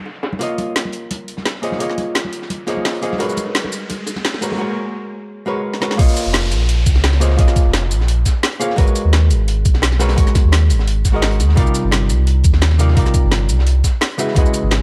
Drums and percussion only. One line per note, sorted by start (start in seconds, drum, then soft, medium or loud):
0.06 open hi-hat medium
0.06 high bongo soft
0.16 closed hi-hat soft
0.23 snare loud
0.23 closed hi-hat medium
0.23 high bongo medium
0.32 snare soft
0.32 high conga medium
0.41 closed hi-hat medium
0.58 closed hi-hat medium
0.58 high conga loud
0.76 snare loud
0.76 closed hi-hat medium
0.85 high conga medium
0.92 closed hi-hat medium
1.11 closed hi-hat medium
1.11 high conga loud
1.28 closed hi-hat medium
1.37 snare soft
1.37 high conga medium
1.45 snare loud
1.45 closed hi-hat medium
1.55 snare soft
1.63 snare soft
1.63 closed hi-hat medium
1.72 snare soft
1.72 high conga loud
1.80 closed hi-hat medium
1.90 snare soft
1.98 closed hi-hat medium
1.98 high conga medium
2.15 snare loud
2.15 closed hi-hat medium
2.25 high conga medium
2.33 closed hi-hat medium
2.42 snare soft
2.50 closed hi-hat medium
2.50 high conga medium
2.67 snare soft
2.67 closed hi-hat medium
2.77 high conga medium
2.85 snare loud
2.85 closed hi-hat medium
2.85 open hi-hat medium
2.95 closed hi-hat soft
3.03 closed hi-hat medium
3.12 snare soft
3.12 high conga medium
3.20 closed hi-hat medium
3.20 high bongo medium
3.29 shaker soft
3.37 closed hi-hat medium
3.37 high conga medium
3.37 shaker medium
3.46 high bongo medium
3.55 snare loud
3.55 closed hi-hat medium
3.64 high bongo medium
3.64 high conga medium
3.72 closed hi-hat medium
3.72 shaker medium
3.89 closed hi-hat medium
3.89 high bongo medium
3.89 high conga medium
4.07 closed hi-hat medium
4.07 high bongo medium
4.07 shaker medium
4.16 snare soft
4.16 high conga medium
4.25 snare loud
4.25 closed hi-hat medium
4.34 snare soft
4.34 high bongo medium
4.42 snare soft
4.42 closed hi-hat medium
4.42 shaker medium
4.51 snare soft
4.51 high bongo medium
4.51 high conga medium
5.74 snare medium
5.82 snare medium
5.91 snare medium
5.99 kick loud
5.99 closed hi-hat medium
5.99 closed hi-hat loud
6.08 shaker soft
6.17 closed hi-hat medium
6.17 shaker medium
6.33 snare loud
6.33 closed hi-hat medium
6.33 closed hi-hat loud
6.51 closed hi-hat medium
6.51 shaker medium
6.69 closed hi-hat medium
6.69 closed hi-hat loud
6.86 kick loud
6.86 closed hi-hat medium
6.86 shaker medium
6.95 snare soft
7.04 snare loud
7.04 closed hi-hat loud
7.04 closed hi-hat medium
7.13 snare soft
7.21 snare soft
7.21 closed hi-hat medium
7.21 shaker medium
7.30 snare soft
7.39 kick loud
7.39 closed hi-hat loud
7.39 closed hi-hat medium
7.48 snare soft
7.48 shaker soft
7.56 kick loud
7.56 closed hi-hat medium
7.56 shaker medium
7.74 snare loud
7.74 closed hi-hat loud
7.74 closed hi-hat medium
7.91 closed hi-hat medium
7.91 shaker medium
8.01 snare soft
8.08 closed hi-hat loud
8.26 kick medium
8.26 snare soft
8.26 closed hi-hat medium
8.26 shaker medium
8.43 snare loud
8.43 closed hi-hat medium
8.43 open hi-hat medium
8.52 closed hi-hat soft
8.61 closed hi-hat medium
8.61 shaker medium
8.70 snare soft
8.78 kick loud
8.78 closed hi-hat medium
8.87 shaker soft
8.96 closed hi-hat medium
8.96 shaker medium
9.13 snare loud
9.13 closed hi-hat medium
9.30 closed hi-hat medium
9.30 shaker medium
9.48 closed hi-hat medium
9.65 kick loud
9.65 closed hi-hat medium
9.65 shaker medium
9.74 snare soft
9.82 snare loud
9.82 closed hi-hat loud
9.82 closed hi-hat medium
9.92 snare soft
10.00 snare loud
10.00 closed hi-hat medium
10.00 shaker medium
10.09 snare loud
10.09 closed hi-hat medium
10.18 kick loud
10.18 closed hi-hat medium
10.27 snare soft
10.27 shaker soft
10.35 kick loud
10.35 snare medium
10.35 closed hi-hat medium
10.35 shaker medium
10.52 snare loud
10.52 closed hi-hat medium
10.70 closed hi-hat medium
10.70 shaker medium
10.79 snare medium
10.87 closed hi-hat medium
11.05 kick medium
11.05 snare soft
11.05 closed hi-hat medium
11.05 shaker medium
11.22 snare loud
11.22 closed hi-hat medium
11.22 open hi-hat medium
11.31 closed hi-hat soft
11.40 snare soft
11.40 closed hi-hat medium
11.40 shaker medium
11.49 snare soft
11.57 kick loud
11.57 closed hi-hat medium
11.67 shaker soft
11.74 closed hi-hat medium
11.74 shaker medium
11.91 snare loud
11.91 closed hi-hat medium
12.10 closed hi-hat medium
12.10 shaker medium
12.27 closed hi-hat medium
12.44 kick loud
12.44 closed hi-hat medium
12.44 shaker medium
12.53 snare soft
12.61 snare loud
12.61 closed hi-hat medium
12.71 snare soft
12.79 snare soft
12.79 closed hi-hat medium
12.79 shaker medium
12.88 snare soft
12.97 kick loud
12.97 closed hi-hat medium
12.97 closed hi-hat loud
13.06 snare soft
13.06 shaker soft
13.14 kick loud
13.14 closed hi-hat medium
13.14 shaker medium
13.31 snare loud
13.31 closed hi-hat medium
13.49 closed hi-hat medium
13.49 shaker medium
13.59 snare medium
13.67 closed hi-hat medium
13.84 kick medium
13.84 snare soft
13.84 closed hi-hat medium
13.84 shaker medium
14.01 snare loud
14.01 closed hi-hat medium
14.01 open hi-hat medium
14.11 closed hi-hat soft
14.19 closed hi-hat medium
14.19 shaker medium
14.28 snare soft
14.36 kick loud
14.36 closed hi-hat medium
14.46 shaker soft
14.54 closed hi-hat medium
14.54 shaker medium
14.71 snare loud
14.71 closed hi-hat medium
14.71 closed hi-hat loud